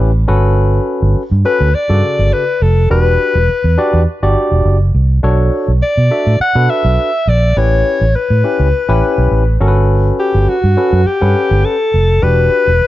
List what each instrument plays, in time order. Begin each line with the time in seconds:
Already playing: tine electric piano C#4 E4 G4 B4
0.00 fingered electric bass A1
0.28 fingered electric bass G1, tine electric piano C#4 F#4 A4 B4
1.02 fingered electric bass G1
1.16 muted fingered electric bass stroke
1.31 fingered electric bass G2
1.45 tine electric piano C#4 F#4 A4 B4, alto saxophone B4
1.61 fingered electric bass D2
1.75 alto saxophone D5
1.89 fingered electric bass G2, tine electric piano C#3 F#4 A4 D5
2.19 fingered electric bass G1
2.33 alto saxophone B4
2.62 fingered electric bass F1, alto saxophone A4
2.90 fingered electric bass E1, tine electric piano D4 F#4 G4 B4, alto saxophone B4
3.35 fingered electric bass E1
3.49 muted fingered electric bass stroke
3.64 fingered electric bass E2
3.78 tine electric piano D4 F#4 G4 D5
3.93 fingered electric bass E2
4.22 fingered electric bass G1, tine electric piano D4 F#4 G4 D5
4.51 fingered electric bass E1
4.65 fingered electric bass F#1
4.95 fingered electric bass C2
5.23 fingered electric bass B1, tine electric piano D4 F#4 A4 C#5
5.68 fingered electric bass B1
5.82 alto saxophone D5, muted fingered electric bass stroke
5.97 fingered electric bass B2
6.11 tine electric piano D4 F#4 A4 E5
6.27 fingered electric bass A2
6.40 alto saxophone F#5, muted fingered electric bass stroke
6.55 fingered electric bass B2, tine electric piano D4 F#4 A4 B4
6.70 alto saxophone E5
6.85 fingered electric bass B1
7.27 fingered electric bass A#1, alto saxophone D5
7.57 fingered electric bass A1, tine electric piano C#4 E4 G4 B4, alto saxophone C#5
8.01 fingered electric bass A1
8.15 alto saxophone B4, muted fingered electric bass stroke
8.30 fingered electric bass A2
8.44 tine electric piano C#4 E4 G4 B4
8.60 fingered electric bass C#2
8.89 fingered electric bass A1, tine electric piano C#4 E4 G4 B4
9.18 fingered electric bass B1
9.31 fingered electric bass A1
9.61 fingered electric bass G1, tine electric piano C#4 F#4 A4 A#4
9.68 tine electric piano B4
10.20 alto saxophone G4
10.35 fingered electric bass G1
10.48 alto saxophone F#4, muted fingered electric bass stroke
10.64 fingered electric bass G2
10.77 tine electric piano C#4 F#4 A4 B4
10.93 fingered electric bass F#2
11.06 alto saxophone G4, muted fingered electric bass stroke
11.21 fingered electric bass G2, tine electric piano C#4 A4 B4 F#5
11.51 fingered electric bass G1
11.65 alto saxophone A4
11.94 fingered electric bass F1
12.22 fingered electric bass E1, tine electric piano D4 F#4 G4 B4, alto saxophone B4
12.67 fingered electric bass E1
12.81 muted fingered electric bass stroke